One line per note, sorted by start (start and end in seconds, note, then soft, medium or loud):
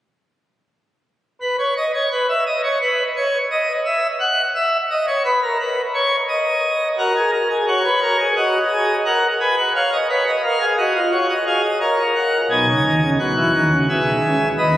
1.41 1.56 B4 medium
1.59 1.74 C#5 medium
1.77 1.92 D#5 medium
1.94 2.09 C#5 medium
2.12 2.27 B4 medium
2.29 2.44 E5 medium
2.47 2.61 D#5 medium
2.64 2.79 C#5 medium
2.82 3.03 B4 medium
3.17 3.38 C#5 medium
3.51 3.73 D#5 medium
3.85 4.07 E5 medium
4.20 4.42 F#5 medium
4.55 4.77 E5 medium
4.91 5.06 D#5 medium
5.07 5.23 C#5 medium
5.25 5.40 B4 medium
5.42 5.57 A#4 medium
5.60 5.82 B4 medium
5.94 6.16 C#5 medium
6.29 6.88 D#5 medium
6.99 7.13 F#4 medium
6.99 7.31 A#4 medium
7.16 7.31 G#4 medium
7.33 7.48 A#4 medium
7.50 7.65 G#4 medium
7.68 7.83 F#4 medium
7.68 8.28 C#5 medium
7.85 8.00 B4 medium
8.02 8.17 A#4 medium
8.19 8.35 G#4 medium
8.36 8.58 F#4 medium
8.36 8.96 D#5 medium
8.72 8.93 G#4 medium
9.06 9.27 A#4 medium
9.06 9.27 F#5 medium
9.40 9.62 B4 medium
9.40 9.55 G#5 medium
9.58 9.73 F#5 medium
9.75 9.97 C#5 medium
9.75 9.90 F5 medium
9.92 10.07 D#5 medium
10.10 10.31 B4 medium
10.10 10.24 C#5 medium
10.27 10.42 D#5 medium
10.44 10.59 A#4 medium
10.44 10.65 F5 medium
10.60 10.76 G#4 medium
10.78 10.93 F#4 medium
10.78 10.99 D#5 medium
10.95 11.10 F4 medium
11.12 11.34 F#4 medium
11.12 11.27 C#5 medium
11.30 11.45 D#5 medium
11.47 11.68 G#4 medium
11.47 11.62 F5 medium
11.63 11.79 D#5 medium
11.80 12.40 A#4 medium
11.80 12.03 C#5 medium
12.16 12.37 F#5 medium
12.50 12.65 B1 medium
12.50 12.65 B2 medium
12.50 13.10 D#4 medium
12.50 13.10 G#5 medium
12.68 12.83 C#2 medium
12.68 12.83 C#3 medium
12.85 13.00 D#2 medium
12.85 13.00 D#3 medium
13.02 13.17 C#2 medium
13.02 13.18 C#3 medium
13.19 13.34 B1 medium
13.19 13.34 B2 medium
13.19 13.79 F#4 medium
13.19 13.79 F#5 medium
13.36 13.52 E2 medium
13.36 13.52 E3 medium
13.55 13.69 D#2 medium
13.55 13.70 D#3 medium
13.72 13.87 C#2 medium
13.72 13.87 C#3 medium
13.89 14.10 B1 medium
13.89 14.10 B2 medium
13.89 14.48 G#4 medium
13.89 14.48 E5 medium
14.24 14.45 C#2 medium
14.24 14.45 C#3 medium
14.58 14.77 D#2 medium
14.58 14.77 D#3 medium
14.58 14.77 B4 medium
14.58 14.77 D#5 medium